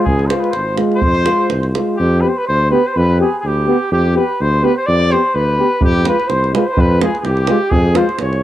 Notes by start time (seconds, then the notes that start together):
0.04 C#2 G#4, davul low
0.19 davul high
0.27 G#3 F4 C5, davul high
0.40 B4
0.44 davul high
0.50 G#1 C5, davul high
0.56 C5
0.76 G#3 F4, davul high
0.92 davul high
0.96 C5
1.01 F2, davul low
1.15 davul high
1.24 G#3 F4, davul high
1.50 C2, davul high
1.63 davul high
1.74 G#3 F4, davul high
1.97 F2 G4
2.21 B3 G4 B4
2.28 C5
2.35 B4
2.46 D2 C5
2.70 B3 G4 B4
2.86 C5
2.93 F2 B4
3.20 B3 G4 G#4
3.39 G#4
3.44 D2 G4
3.67 B3 G4
3.91 F2 G4
4.15 B3 G4 B4
4.19 B4
4.40 D2 C5
4.62 B3 G4 B4
4.75 C5
4.86 F2 D5
5.10 B3 G4 C5
5.34 D2 B4
5.59 B3 G4
5.81 F2 G4, davul low
6.04 G#3 F4 B4, davul high
6.08 B4
6.19 davul high
6.27 C2 C5, davul high
6.44 davul high
6.53 G#3 F4 B4, davul high
6.63 C5
6.67 C5
6.72 B4
6.77 F2 B4, davul low
7.01 G#3 F4 G#4, davul high
7.15 G#4, davul high
7.19 G#4
7.24 C2 G4, davul high
7.37 davul high
7.47 G#3 F4, davul high
7.70 F2 G#4, davul low
7.95 G#3 F4 C5, davul high
8.09 davul high
8.19 C2 C#5, davul high
8.33 davul high